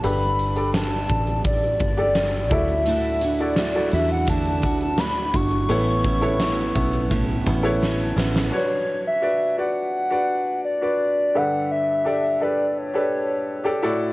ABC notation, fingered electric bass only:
X:1
M:4/4
L:1/8
Q:1/4=85
K:Glyd
V:1 name="Fingered electric bass" clef=bass
G,,,3 A,,,2 G,,,2 D,,- | D,,3 E,,2 D,,2 G,,, | A,,,3 B,,,2 A,,,2 A,,, | z8 |
z8 |]